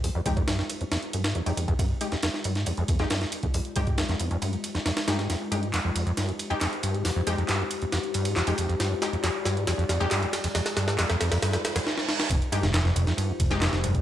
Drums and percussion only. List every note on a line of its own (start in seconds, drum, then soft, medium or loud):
0.04 closed hi-hat soft
0.04 open hi-hat medium
0.26 kick medium
0.26 closed hi-hat medium
0.26 ride medium
0.37 kick medium
0.37 closed hi-hat soft
0.48 snare loud
0.48 closed hi-hat soft
0.48 ride medium
0.59 snare soft
0.70 closed hi-hat medium
0.70 ride medium
0.81 closed hi-hat soft
0.92 snare loud
0.92 closed hi-hat soft
0.92 ride medium
1.03 closed hi-hat soft
1.13 closed hi-hat medium
1.13 ride medium
1.24 snare loud
1.24 closed hi-hat soft
1.24 ride medium
1.35 closed hi-hat soft
1.46 closed hi-hat soft
1.46 ride medium
1.57 closed hi-hat medium
1.57 ride medium
1.68 kick medium
1.68 closed hi-hat soft
1.79 kick loud
1.79 closed hi-hat soft
1.79 ride medium
2.01 closed hi-hat medium
2.01 ride medium
2.12 snare medium
2.12 closed hi-hat soft
2.23 snare loud
2.23 closed hi-hat soft
2.23 ride medium
2.34 snare soft
2.44 closed hi-hat medium
2.44 ride medium
2.55 snare soft
2.55 closed hi-hat soft
2.66 closed hi-hat soft
2.66 ride medium
2.77 closed hi-hat soft
2.88 kick medium
2.88 closed hi-hat medium
2.88 ride medium
2.99 snare soft
2.99 closed hi-hat soft
3.10 snare loud
3.10 closed hi-hat soft
3.10 ride medium
3.21 snare medium
3.21 closed hi-hat soft
3.32 closed hi-hat medium
3.32 ride medium
3.43 kick medium
3.43 closed hi-hat soft
3.54 closed hi-hat soft
3.54 open hi-hat medium
3.65 closed hi-hat soft
3.76 kick medium
3.76 closed hi-hat medium
3.76 ride medium
3.87 kick medium
3.87 closed hi-hat soft
3.98 snare loud
3.98 closed hi-hat soft
3.98 ride medium
4.09 snare medium
4.09 closed hi-hat soft
4.20 closed hi-hat medium
4.20 ride medium
4.31 closed hi-hat soft
4.42 closed hi-hat soft
4.42 ride medium
4.53 closed hi-hat soft
4.64 closed hi-hat medium
4.64 ride medium
4.75 snare soft
4.75 closed hi-hat soft
4.86 snare loud
4.86 closed hi-hat soft
4.86 ride medium
4.97 snare loud
4.97 closed hi-hat soft
4.97 ride medium
5.08 snare loud
5.08 closed hi-hat medium
5.08 ride medium
5.19 snare soft
5.19 closed hi-hat soft
5.30 snare soft
5.30 closed hi-hat soft
5.30 ride medium
5.52 closed hi-hat medium
5.52 ride medium
5.63 closed hi-hat soft
5.74 snare soft
5.74 clap loud
5.74 closed hi-hat soft
5.74 ride medium
5.96 closed hi-hat medium
5.96 ride medium
6.07 closed hi-hat soft
6.17 snare soft
6.17 closed hi-hat soft
6.17 ride medium
6.29 closed hi-hat soft
6.39 closed hi-hat medium
6.39 ride medium
6.51 closed hi-hat soft
6.61 snare medium
6.61 clap loud
6.61 closed hi-hat soft
6.61 ride medium
6.73 closed hi-hat soft
6.83 closed hi-hat medium
6.83 ride medium
6.95 closed hi-hat soft
7.05 snare medium
7.05 closed hi-hat soft
7.05 open hi-hat medium
7.27 closed hi-hat medium
7.27 ride medium
7.38 closed hi-hat soft
7.49 snare medium
7.49 clap loud
7.49 closed hi-hat soft
7.49 ride medium
7.71 closed hi-hat medium
7.71 ride medium
7.82 closed hi-hat soft
7.92 snare medium
7.92 closed hi-hat soft
7.92 ride medium
8.04 closed hi-hat soft
8.14 closed hi-hat medium
8.14 ride medium
8.25 closed hi-hat soft
8.25 ride medium
8.36 snare medium
8.36 clap loud
8.36 closed hi-hat soft
8.47 closed hi-hat soft
8.47 ride medium
8.58 closed hi-hat medium
8.58 ride medium
8.70 closed hi-hat soft
8.80 snare medium
8.80 closed hi-hat soft
8.80 ride medium
9.02 snare medium
9.02 closed hi-hat medium
9.02 ride medium
9.13 closed hi-hat soft
9.24 snare medium
9.24 clap loud
9.24 closed hi-hat soft
9.24 ride medium
9.45 snare medium
9.45 closed hi-hat medium
9.45 ride medium
9.57 closed hi-hat soft
9.67 snare medium
9.67 closed hi-hat soft
9.67 ride medium
9.79 closed hi-hat soft
9.89 snare medium
9.89 closed hi-hat medium
9.89 ride medium
10.01 closed hi-hat soft
10.11 snare medium
10.11 clap loud
10.11 closed hi-hat soft
10.11 ride medium
10.23 closed hi-hat soft
10.33 snare medium
10.33 closed hi-hat medium
10.33 ride medium
10.44 closed hi-hat soft
10.44 ride medium
10.55 snare medium
10.55 closed hi-hat soft
10.55 ride medium
10.66 snare medium
10.66 closed hi-hat soft
10.66 ride medium
10.77 snare medium
10.77 closed hi-hat medium
10.77 ride medium
10.88 snare medium
10.88 closed hi-hat soft
10.99 snare medium
10.99 clap loud
10.99 closed hi-hat soft
10.99 ride medium
11.10 snare medium
11.10 closed hi-hat soft
11.21 snare medium
11.21 closed hi-hat medium
11.21 ride medium
11.32 snare medium
11.32 closed hi-hat soft
11.32 ride medium
11.42 snare loud
11.42 closed hi-hat soft
11.42 ride medium
11.53 snare medium
11.53 closed hi-hat soft
11.53 ride medium
11.65 snare loud
11.65 closed hi-hat medium
11.65 ride medium
11.76 snare medium
11.76 closed hi-hat soft
11.76 ride medium
11.87 snare medium
11.98 snare medium
12.09 snare medium
12.20 snare medium
12.30 kick loud
12.30 closed hi-hat soft
12.30 ride medium
12.42 closed hi-hat soft
12.52 closed hi-hat medium
12.52 ride medium
12.63 snare medium
12.63 closed hi-hat soft
12.74 snare loud
12.74 clap loud
12.74 closed hi-hat soft
12.74 ride medium
12.85 snare soft
12.96 closed hi-hat medium
12.96 ride medium
13.07 snare soft
13.07 closed hi-hat soft
13.18 closed hi-hat soft
13.18 ride medium
13.40 kick loud
13.40 closed hi-hat medium
13.40 ride medium
13.51 snare soft
13.51 closed hi-hat soft
13.62 snare loud
13.62 clap loud
13.62 closed hi-hat soft
13.62 ride medium
13.73 snare medium
13.73 closed hi-hat soft
13.84 closed hi-hat medium
13.84 ride medium
13.95 kick loud
13.95 closed hi-hat soft